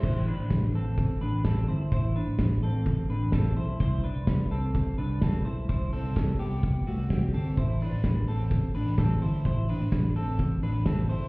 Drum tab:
CC |x-------|--------|--------|--------|
HH |--x-x-x-|x-x-x-x-|x-x-x-x-|xoxoxoxo|
SD |--o---o-|--o---o-|--o---o-|--o---o-|
BD |o-o-o-o-|o-o-o-o-|o-o-o-o-|o-o-o-o-|

CC |--------|--------|
HH |xoxoxoxo|xoxoxoxo|
SD |--o---o-|--o---o-|
BD |o-o-o-o-|o-o-o-o-|